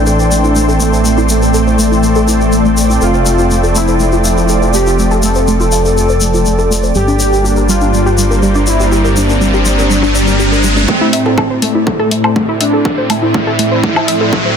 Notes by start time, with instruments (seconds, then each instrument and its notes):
Already playing: detuned saw bass A1, analog synth pad E3 A3 C4, analog polysynth D4, ambient pad A4 D5 G5 C6
0.06 synth arpeggio sound A4, shaker
0.19 synth arpeggio sound C5, shaker
0.31 synth arpeggio sound A3, shaker
0.44 synth arpeggio sound E4, shaker
0.56 synth arpeggio sound A3, shaker
0.69 synth arpeggio sound A4, shaker
0.80 analog polysynth A3, synth arpeggio sound A3, shaker
0.93 synth arpeggio sound C5, shaker
1.05 synth arpeggio sound A3, shaker
1.18 synth arpeggio sound E4, shaker
1.29 analog polysynth A3, synth arpeggio sound A3, shaker
1.42 synth arpeggio sound A4, shaker
1.54 synth arpeggio sound A4, shaker
1.67 synth arpeggio sound C5, shaker
1.79 synth arpeggio sound A3, shaker
1.91 synth arpeggio sound E4, shaker
2.03 synth arpeggio sound A3, shaker
2.15 synth arpeggio sound A4, shaker
2.28 synth arpeggio sound E4, shaker
2.41 synth arpeggio sound A4, shaker
2.52 synth arpeggio sound A3, shaker
2.65 synth arpeggio sound A3, shaker
2.77 synth arpeggio sound A4, shaker
2.90 synth arpeggio sound E4, shaker
3.01 detuned saw bass F1, analog synth pad F3, analog polysynth F4, synth arpeggio sound A4, shaker
3.14 synth arpeggio sound C5, shaker
3.26 synth arpeggio sound A3, shaker
3.38 synth arpeggio sound F4, shaker
3.51 synth arpeggio sound A3, shaker
3.64 synth arpeggio sound A4, shaker
3.75 synth arpeggio sound A3, analog polysynth E4, shaker
3.87 synth arpeggio sound C5, shaker
4.00 synth arpeggio sound A3, shaker
4.12 synth arpeggio sound F4, shaker
4.24 synth arpeggio sound F5, shaker
4.37 synth arpeggio sound A4, shaker
4.48 synth arpeggio sound A4, shaker
4.62 synth arpeggio sound C5, shaker
4.74 synth arpeggio sound A3, analog polysynth G4, shaker
4.87 synth arpeggio sound F4, shaker
4.98 synth arpeggio sound A3, shaker
5.11 synth arpeggio sound A4, shaker
5.23 synth arpeggio sound A3, analog polysynth A4, shaker
5.35 synth arpeggio sound C5, shaker
5.48 synth arpeggio sound A3, shaker
5.60 synth arpeggio sound F4, shaker
5.72 synth arpeggio sound F5, shaker
5.85 synth arpeggio sound A4, shaker
5.97 synth arpeggio sound A4, shaker
6.09 synth arpeggio sound C5, shaker
6.21 synth arpeggio sound A3, shaker
6.34 synth arpeggio sound F4, shaker
6.46 synth arpeggio sound A3, shaker
6.58 synth arpeggio sound A4, shaker
6.71 synth arpeggio sound A3, shaker
6.83 synth arpeggio sound C5, shaker
6.95 detuned saw bass G1, analog synth pad G3 A#3 D4, synth arpeggio sound G3, analog polysynth G4, ambient pad G4, riser, shaker
7.08 synth arpeggio sound D4, shaker
7.20 synth arpeggio sound D5, shaker
7.26 ambient pad C5 D5
7.32 synth arpeggio sound G4, shaker
7.44 synth arpeggio sound G4, shaker
7.56 synth arpeggio sound A#4, shaker
7.63 ambient pad A#5
7.69 synth arpeggio sound G3, analog polysynth F4, shaker
7.81 synth arpeggio sound D4, shaker
7.93 synth arpeggio sound G3, shaker
8.06 synth arpeggio sound G4, shaker
8.18 synth arpeggio sound G3, shaker
8.31 synth arpeggio sound A#4, shaker
8.43 synth arpeggio sound G3, shaker
8.55 synth arpeggio sound D4, shaker
8.67 analog polysynth E4, synth arpeggio sound D5, shaker
8.80 synth arpeggio sound G4, shaker
8.92 analog synth pad C4, synth arpeggio sound G4, shaker
9.05 synth arpeggio sound A#4, shaker
9.16 synth arpeggio sound G3, analog polysynth D4, shaker
9.29 synth arpeggio sound D4, shaker
9.41 synth arpeggio sound G3, shaker
9.53 synth arpeggio sound G4, shaker
9.65 synth arpeggio sound G3, shaker
9.78 synth arpeggio sound A#4, shaker
9.90 synth arpeggio sound G3, shaker
10.03 synth arpeggio sound D4, shaker
10.15 synth arpeggio sound D5, shaker
10.27 synth arpeggio sound G4, shaker
10.39 synth arpeggio sound G4, shaker
10.52 synth arpeggio sound A#4, shaker
10.63 synth arpeggio sound G3, shaker
10.76 synth arpeggio sound D4, shaker
10.88 analog synth pad A2 A3 C4 E4, synth arpeggio sound A3, analog polysynth C4, ambient pad A4, kick, mid tom, riser
10.98 synth arpeggio sound E4, ambient pad D5
11.13 synth arpeggio sound E5, open hi-hat
11.26 synth arpeggio sound A4, mid tom
11.38 synth arpeggio sound A4, ambient pad G5, kick, mid tom, low woodblock
11.50 synth arpeggio sound C5
11.62 analog polysynth A3, synth arpeggio sound A3, open hi-hat
11.73 synth arpeggio sound E4, ambient pad C6
11.87 synth arpeggio sound A3, kick, mid tom
11.99 synth arpeggio sound A4
12.11 synth arpeggio sound A3, open hi-hat
12.24 synth arpeggio sound C5, low woodblock
12.36 synth arpeggio sound A3, kick, mid tom
12.49 synth arpeggio sound E4
12.61 analog polysynth D4, synth arpeggio sound E5, open hi-hat
12.73 synth arpeggio sound A4
12.85 synth arpeggio sound A4, kick, mid tom
12.98 synth arpeggio sound C5
13.10 synth arpeggio sound A3, analog polysynth E4, open hi-hat, low woodblock
13.22 synth arpeggio sound E4
13.34 synth arpeggio sound A3, kick, mid tom
13.47 synth arpeggio sound A4
13.59 synth arpeggio sound A3, open hi-hat
13.72 synth arpeggio sound C5
13.84 synth arpeggio sound A3, kick, mid tom
13.96 synth arpeggio sound E4, low woodblock
14.08 synth arpeggio sound E5, open hi-hat
14.21 synth arpeggio sound A4
14.33 synth arpeggio sound A4, kick, mid tom
14.45 synth arpeggio sound C5